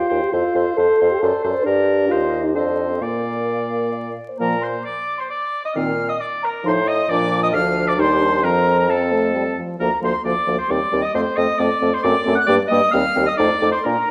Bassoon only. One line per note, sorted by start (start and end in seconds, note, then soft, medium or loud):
0.11 0.21 D#2 soft
0.33 0.43 F2 soft
0.55 0.65 F2 soft
0.78 0.88 F2 soft
1.01 1.11 F2 soft
1.23 1.32 F#2 medium
1.44 1.54 F#2 medium
1.66 2.13 G2 medium
2.11 2.57 D#2 soft
2.55 3.01 F2 soft
3.01 4.15 A#2 soft
4.40 4.78 A#2 soft
5.77 6.13 A#2 medium
6.67 7.02 A2 medium
7.11 7.56 A#2 medium
7.54 7.98 D2 medium
7.99 8.45 D#2 medium
8.44 9.58 F2 medium
9.80 9.90 D2 medium
10.03 10.13 D2 soft
10.25 10.35 D2 soft
10.48 10.58 D2 medium
10.70 10.80 D#2 medium
10.93 11.03 D#2 soft
11.15 11.25 F2 medium
11.37 11.47 F2 medium
11.59 11.69 F2 medium
11.82 11.92 F2 medium
12.04 12.14 F#2 medium
12.27 12.37 F#2 medium
12.49 12.59 G2 medium
12.72 12.82 G2 medium
12.94 13.04 D#2 medium
13.17 13.27 D#2 medium
13.39 13.50 F2 medium
13.62 13.73 F2 medium
13.86 13.96 A#2 medium